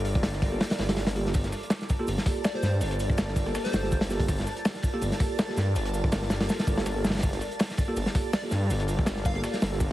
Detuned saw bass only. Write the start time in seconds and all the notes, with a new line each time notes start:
Already playing: G1
0.78 G1
2.07 G1
2.62 G2
2.81 G1
3.73 G1
5.02 G1
5.57 G2
5.75 G1
6.67 G1
7.96 G1
8.52 G2
8.70 G1
9.62 G1